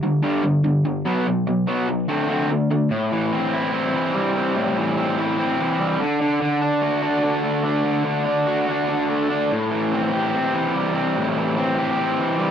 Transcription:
0.03 0.21 G2 medium
0.03 0.21 D3 medium
0.22 0.42 G2 medium
0.22 0.42 D3 medium
0.22 0.42 G3 medium
0.44 0.62 G2 medium
0.44 0.62 D3 medium
0.64 0.83 G2 medium
0.64 0.83 D3 medium
0.85 1.03 G2 medium
0.85 1.03 D3 medium
1.05 1.25 B2 medium
1.05 1.25 F#3 medium
1.05 1.25 B3 medium
1.27 1.45 B2 medium
1.27 1.45 F#3 medium
1.47 1.65 B2 medium
1.47 1.66 F#3 medium
1.67 1.87 B2 medium
1.67 1.87 F#3 medium
1.67 1.87 B3 medium
1.89 2.07 B2 medium
1.89 2.07 F#3 medium
2.08 2.27 D3 medium
2.08 2.28 A3 medium
2.08 2.28 C4 medium
2.28 2.48 D3 medium
2.28 2.48 A3 medium
2.28 2.49 C4 medium
2.50 2.68 D3 medium
2.50 2.69 A3 medium
2.71 2.89 D3 medium
2.71 2.89 A3 medium
2.90 3.94 A2 medium
3.12 3.93 E3 medium
3.32 3.72 C4 medium
3.53 4.56 E4 medium
3.73 4.34 C4 medium
3.94 4.76 E3 medium
4.14 5.18 G3 medium
4.36 4.96 C4 medium
4.56 5.59 A2 medium
4.77 5.58 E3 medium
4.97 5.37 C4 medium
5.18 6.01 E4 medium
5.38 6.00 C4 medium
5.59 5.99 E3 medium
5.79 6.00 G3 medium
6.00 6.21 D3 medium
6.21 6.41 D3 medium
6.42 7.22 D3 medium
6.62 7.02 D4 medium
6.82 7.86 F#4 medium
7.03 7.63 D4 medium
7.24 7.83 D3 medium
7.43 9.09 A3 medium
7.64 8.25 D4 medium
7.85 8.04 D3 medium
8.05 8.88 D3 medium
8.26 8.67 D4 medium
8.47 9.51 F#4 medium
8.68 9.29 D4 medium
8.89 9.51 D3 medium
9.09 10.16 A3 medium
9.30 9.51 D4 medium
9.51 10.54 A2 medium
9.71 10.53 E3 medium
9.92 10.31 C4 medium
10.13 11.16 G4 medium
10.33 10.94 C4 medium
10.54 11.35 E3 medium
10.74 11.77 G3 medium
10.95 11.56 C4 medium
11.16 12.19 A2 medium
11.36 12.18 E3 medium
11.57 11.98 C4 medium
11.78 12.51 G4 medium
11.99 12.51 C4 medium
12.19 12.51 E3 medium
12.39 12.51 G3 medium

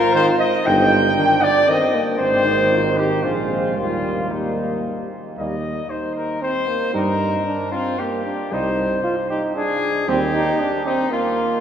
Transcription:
0.00 0.38 F4 loud
0.00 0.14 A#4 loud
0.13 0.30 D#3 medium
0.13 0.38 C5 loud
0.13 0.26 C5 loud
0.38 0.65 D#5 loud
0.38 0.68 D#5 loud
0.65 1.09 G1 loud
0.65 1.19 D#4 loud
0.65 1.44 G5 loud
1.17 1.34 D#3 medium
1.17 1.70 D4 medium
1.42 1.69 D5 loud
1.42 1.72 D5 loud
1.68 1.85 D#3 medium
1.68 1.96 C4 loud
1.68 2.01 D#5 loud
1.68 2.03 D#5 loud
1.94 2.19 A#3 medium
2.19 3.20 G#1 loud
2.19 3.26 D#3 medium
2.19 2.47 C4 loud
2.19 2.99 C5 loud
2.19 2.95 C5 loud
2.45 2.71 D#4 medium
2.72 2.84 F4 medium
2.98 3.23 D#4 loud
2.98 3.25 G4 loud
2.98 3.11 G4 medium
3.23 3.79 A#1 medium
3.23 3.76 G#3 medium
3.23 3.36 D4 medium
3.23 3.76 F4 medium
3.23 3.77 F4 medium
3.50 3.76 C4 medium
3.77 5.11 D#2 medium
3.77 4.30 G3 medium
3.77 5.08 A#3 medium
3.77 4.32 F4 medium
3.77 4.33 F4 medium
4.30 5.09 G3 medium
4.30 4.84 D#4 medium
4.30 4.85 D#4 medium
5.36 5.81 D#2 medium
5.36 5.56 G3 medium
5.36 5.55 A#3 medium
5.36 5.91 D#5 medium
5.90 6.44 D#4 medium
5.90 6.14 C5 medium
6.15 6.41 A#4 medium
6.42 6.69 C4 medium
6.42 6.93 C5 loud
6.68 6.95 A#3 medium
6.93 7.38 G2 medium
6.93 7.12 G3 medium
6.93 7.45 D#4 medium
6.93 7.12 D#4 medium
6.93 7.71 A#4 loud
7.46 7.72 D4 medium
7.72 8.01 C4 medium
7.72 8.00 F4 loud
7.99 8.25 A#3 medium
7.99 8.54 G4 medium
8.25 8.54 D4 medium
8.52 8.96 C2 medium
8.52 8.70 G3 medium
8.52 9.03 D#4 medium
8.52 8.71 D#4 medium
8.52 9.29 C5 loud
9.04 9.16 F4 medium
9.30 9.55 D#4 medium
9.30 9.42 G4 medium
9.55 10.07 D4 medium
9.55 10.10 G#4 loud
10.08 10.51 D#2 loud
10.08 10.26 G3 medium
10.08 10.20 C4 medium
10.08 10.27 C4 medium
10.08 10.85 G4 loud
10.34 10.61 D#4 loud
10.60 10.88 D4 medium
10.85 11.13 C4 medium
10.85 11.10 D#4 loud
11.12 11.60 A#3 loud
11.12 11.60 F4 loud

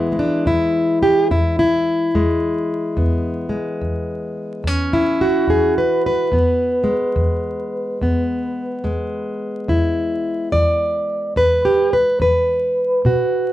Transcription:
0.00 0.39 E2 medium
0.00 6.33 E3 soft
0.00 0.12 G#3 medium
0.00 0.19 B3 medium
0.00 0.47 E4 medium
0.12 2.15 G#3 soft
0.19 0.46 D4 medium
0.46 1.23 E2 medium
0.46 1.02 E4 medium
1.03 1.30 G4 medium
1.31 2.07 E2 medium
1.31 1.58 E4 medium
1.59 4.92 E4 medium
2.15 2.91 E2 medium
2.15 3.49 G#3 soft
2.97 3.74 E2 medium
2.97 5.21 B3 soft
3.49 4.67 G#3 soft
3.81 4.59 E2 medium
4.64 5.42 E2 medium
4.64 5.78 C#4 medium
4.93 5.49 E4 medium
5.21 6.32 F#4 medium
5.47 6.25 E2 medium
5.47 5.77 G#4 medium
5.78 6.05 B4 medium
6.06 9.41 B4 medium
6.32 7.09 E2 medium
6.32 8.02 B3 soft
6.84 8.83 G#3 soft
7.16 7.93 E2 medium
8.01 8.78 E2 medium
8.01 11.65 B3 soft
8.84 9.61 E2 medium
8.84 13.04 G#3 medium
9.68 10.46 E2 medium
9.68 10.52 E4 medium
10.52 11.30 E2 medium
10.52 11.36 D5 loud
11.36 12.13 E2 medium
11.36 11.92 B4 medium
11.65 11.93 G4 medium
11.93 12.20 B4 medium
12.20 12.97 E2 medium
12.20 13.53 B4 medium
13.05 13.53 B2 medium
13.05 13.53 F#4 medium

